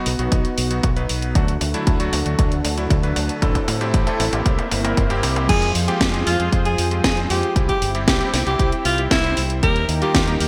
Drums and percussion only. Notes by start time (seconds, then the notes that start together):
0.06 open hi-hat
0.19 closed hi-hat
0.32 kick, closed hi-hat, mid tom
0.45 closed hi-hat
0.58 open hi-hat
0.71 closed hi-hat
0.83 kick, closed hi-hat, mid tom
0.96 closed hi-hat
1.09 open hi-hat
1.22 closed hi-hat
1.35 kick, closed hi-hat, mid tom
1.48 closed hi-hat
1.61 open hi-hat, mid tom
1.74 closed hi-hat
1.87 kick, closed hi-hat, mid tom
2.00 closed hi-hat
2.13 open hi-hat, mid tom
2.26 closed hi-hat
2.39 kick, closed hi-hat, mid tom
2.52 closed hi-hat
2.65 open hi-hat, mid tom
2.78 closed hi-hat
2.90 kick, closed hi-hat, mid tom
3.03 closed hi-hat
3.16 open hi-hat, mid tom
3.29 closed hi-hat
3.42 kick, closed hi-hat, mid tom
3.55 kick, closed hi-hat, mid tom
3.68 open hi-hat, mid tom
3.81 closed hi-hat, mid tom
3.94 kick, closed hi-hat, mid tom
4.07 closed hi-hat, mid tom
4.20 open hi-hat, mid tom
4.33 closed hi-hat, mid tom
4.46 kick, closed hi-hat, mid tom
4.59 closed hi-hat, mid tom
4.71 open hi-hat, mid tom
4.85 closed hi-hat, mid tom
4.97 kick, closed hi-hat, mid tom
5.10 closed hi-hat, mid tom
5.23 open hi-hat, mid tom
5.36 closed hi-hat, mid tom
5.49 kick, closed hi-hat, crash
5.62 closed hi-hat
5.75 open hi-hat
5.88 closed hi-hat
6.01 kick, snare, closed hi-hat
6.14 closed hi-hat
6.27 open hi-hat
6.40 closed hi-hat
6.53 kick, closed hi-hat
6.65 closed hi-hat
6.78 open hi-hat
6.91 closed hi-hat
7.04 kick, snare, closed hi-hat
7.17 closed hi-hat
7.30 open hi-hat
7.43 closed hi-hat
7.56 kick, closed hi-hat
7.69 kick, closed hi-hat
7.82 open hi-hat
7.95 closed hi-hat
8.08 kick, snare, closed hi-hat
8.21 closed hi-hat
8.34 snare, open hi-hat
8.47 closed hi-hat
8.59 kick, closed hi-hat
8.72 closed hi-hat
8.85 open hi-hat
8.98 closed hi-hat
9.11 kick, snare, closed hi-hat
9.24 closed hi-hat
9.37 open hi-hat
9.50 closed hi-hat
9.63 kick, closed hi-hat
9.76 closed hi-hat
9.89 open hi-hat
10.02 closed hi-hat
10.15 kick, snare, closed hi-hat
10.28 closed hi-hat
10.40 open hi-hat